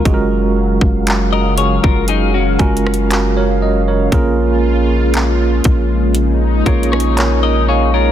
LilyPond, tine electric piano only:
\new Staff \with { instrumentName = "Tine electric piano" } { \time 4/4 \key fis \major \tempo 4 = 59 << { r2. <fis' ais'>16 <ais' cis''>16 dis''16 <ais' cis''>16~ | <ais' cis''>16 r2 r8. <ais' cis''>16 dis''16 <cis'' eis''>16 <ais' cis''>16 | } \\ { <gis cis' eis' fis' gis' ais'>2 r8 <gis cis' eis' fis' ais'>4. | <ais cis' eis' gis' ais'>2 r8 <ais cis' eis' gis' cis''>4. | } >> }